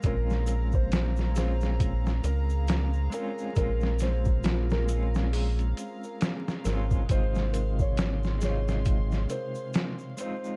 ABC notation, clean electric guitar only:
X:1
M:4/4
L:1/8
Q:"Swing 16ths" 1/4=68
K:Bbm
V:1 name="Clean electric guitar"
[A,CDF]3 [A,CDF]4 [A,CDF] | [A,CDF]3 [A,CDF]4 [A,CDF] | [C,A,EF]3 [C,A,EF]4 [A,CEF] |]